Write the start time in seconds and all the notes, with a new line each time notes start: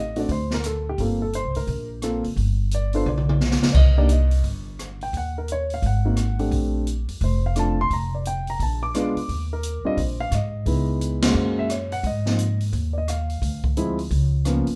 Already playing: A1 D#5
0.16 A3 C4 D4 F#4 D5, open hi-hat
0.29 D2 C5, kick, open hi-hat
0.51 A#4, snare
0.64 A4, cross-stick, closed hi-hat
0.89 G4
0.98 G1 A#3 C4 F4 A4, kick, open hi-hat
1.22 A4
1.33 C5, closed hi-hat
1.45 C2
1.55 D2 A#4, open hi-hat
1.67 A#1, kick, open hi-hat
2.02 A#3 C4 F4 A4, cross-stick, closed hi-hat
2.24 F#1, open hi-hat
2.36 G1, kick, open hi-hat
2.71 D5, closed hi-hat
2.93 B3 D4 F4 A4 C5, open hi-hat
3.06 B1 D5, mid tom
3.17 mid tom
3.29 mid tom
3.40 snare
3.51 snare
3.62 B1, snare
3.72 C2 D5, kick, crash
3.77 D#5
3.97 A#3 D4 D#4 G4 D5
4.09 D#5, closed hi-hat
4.31 open hi-hat
4.44 G1, kick, open hi-hat
4.79 cross-stick, closed hi-hat
5.01 G5, open hi-hat
5.13 D#2 F#5, kick, open hi-hat
5.38 A#4
5.48 closed hi-hat
5.52 C#5
5.70 F5, open hi-hat
5.82 G#1 F#5, kick, open hi-hat
6.05 A#3 C4 D#4 F#4
6.17 cross-stick, closed hi-hat
6.39 A3 C4 D4 G4, open hi-hat
6.51 A#1, kick, open hi-hat
6.87 closed hi-hat
7.08 F2, open hi-hat
7.21 F1 C5, kick, open hi-hat
7.46 F5
7.56 A3 C4 D4 F4 A5, cross-stick, closed hi-hat
7.81 C6
7.90 F1 A#5, kick, open hi-hat
8.15 D5
8.25 G5, closed hi-hat
8.47 A#5, open hi-hat
8.60 A#1 A5, kick, open hi-hat
8.83 D6
8.94 G#3 B3 D4 F4, cross-stick, closed hi-hat
9.16 muted upright bass stroke, open hi-hat
9.29 D#2, kick, open hi-hat
9.53 A#4
9.63 closed hi-hat
9.84 G3 C4 D4 F4 D#5, muted upright bass stroke
9.97 A#1 C5, kick, open hi-hat
10.20 F5
10.31 G#2 D#5, cross-stick, closed hi-hat
10.66 C#2 G#3 B3 D#4 E4, kick, open hi-hat
11.01 closed hi-hat
11.22 G#3 A#3 C#4 F#4 C5, snare, ride
11.34 F#2
11.59 E5
11.70 C#5, cross-stick, closed hi-hat
11.92 F#5, open hi-hat
12.03 G#2 D#5, kick, open hi-hat
12.26 F3 A#3 C4 D#4, snare
12.39 closed hi-hat
12.61 open hi-hat
12.73 D#2, kick, open hi-hat
12.93 D5
12.98 D#5
13.08 F5, cross-stick, closed hi-hat
13.30 open hi-hat
13.42 D2, kick, open hi-hat
13.64 kick
13.77 F3 G#3 C4 E4, closed hi-hat
13.99 open hi-hat
14.10 C#2, kick, open hi-hat
14.45 F3 A#3 B3 C#4, cross-stick, closed hi-hat
14.67 muted upright bass stroke, open hi-hat